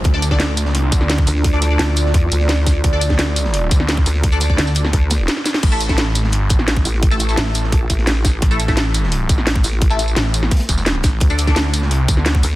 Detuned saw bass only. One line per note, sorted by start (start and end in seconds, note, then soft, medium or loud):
0.05 0.66 D2 loud
0.66 0.91 C#2 loud
0.92 1.26 D2 loud
1.79 2.13 D2 loud
2.84 3.70 D2 loud
3.71 4.05 D2 loud
4.58 4.92 D2 loud
5.63 6.24 A1 loud
6.24 6.49 G#1 loud
6.50 6.84 A1 loud
7.38 7.71 A1 loud
8.42 9.28 A1 loud
10.17 10.50 A1 loud
10.69 11.02 E1 loud
11.04 11.20 A1 loud
11.21 11.82 D2 loud
11.82 12.07 C#2 loud
12.08 12.42 D2 loud